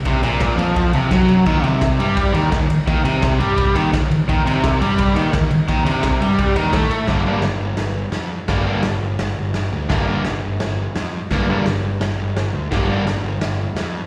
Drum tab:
CC |--------|x-------|--------|--------|
RD |xxxxxxxx|-xxxxxxx|xxxxxxxx|xxxxxxxx|
HH |--------|--------|--------|--------|
SD |--o---o-|--o---o-|--o---o-|--o---o-|
BD |o-o-o-o-|o-o-o-o-|o-o-o-o-|o-o-o-o-|

CC |--------|--------|--------|--------|
RD |xxxxxxxx|--------|--------|--------|
HH |--------|o-o-o-o-|o-o-o-o-|o-o-o-o-|
SD |--o---o-|o-o-o-o-|o-o-o-o-|o-o-o-o-|
BD |o-o-o-o-|o-------|o-------|o-------|

CC |--------|--------|
RD |--------|--------|
HH |o-o-o-o-|o-o-o-o-|
SD |o-o-o-o-|o-o-o-o-|
BD |o-------|o-------|